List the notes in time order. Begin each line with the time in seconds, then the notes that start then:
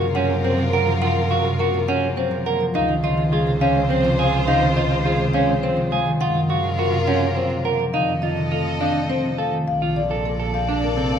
Already playing: F#2 C#3 F3 A#3 F4 A#4
0.01 C3
0.15 C4 C#4 F#5
0.30 A#3
0.44 F#3 C4 C5
0.58 C3
0.73 A#3 A#4 F#5
0.87 F3
1.02 C#3 F4 F#5
1.16 F3
1.30 C#3 F#4 F5
1.45 C3
1.59 A#3 F#4 A#4
1.74 C3
1.88 C4 C#4 F#5
2.02 A#3
2.17 F#3 C4 C5
2.31 C3
2.46 A#3 A#4 F#5
2.60 F3
2.74 C#2 C#3 D#4 F4 C5 F5
2.88 D#3
3.04 C#3 F4 D#5
3.17 C3
3.32 G#3 F4 G#4
3.47 C3
3.61 C4 C#4 F5
3.75 G#3
3.90 F3 C4 C5
4.04 C3
4.19 G#3 G#4 F5
4.33 D#3
4.48 C#3 D#4 F5
4.62 D#3
4.76 C#3 F4 D#5
4.91 C3
5.05 G#3 F4 G#4
5.19 C3
5.34 C4 C#4 F5
5.48 G#3
5.63 F3 C4 C5
5.77 C3
5.91 G#3 G#4 F5
6.06 D#3
6.20 F#2 C#3 F4 A#4 F#5
6.35 F3
6.49 C#3 F#4 F5
6.64 C3
6.78 A#3 F#4 A#4
6.92 C3
7.07 C4 C#4 F#5
7.21 A#3
7.36 F#3 C4 C5
7.50 C3
7.64 A#3 A#4 F#5
7.79 F3
7.94 F2 D3 D#4 A4 D#5 F5
8.08 D#3
8.22 D3 F4 D#5
8.37 C3
8.51 A3 F4 A4
8.66 C3
8.80 C4 D4 F5
8.95 A3
9.09 F3 C4 C5
9.24 C3
9.38 A3 A4 F5
9.53 D#3
9.67 A#1 A4 D5 F5
9.82 F3 F4
9.96 D3 D5
10.11 C3 A4
10.25 A#3 A4
10.40 C3 A4
10.54 C4 F5
10.68 A#3 D4
10.83 A#4
10.97 C3 C4
11.12 A#3 F5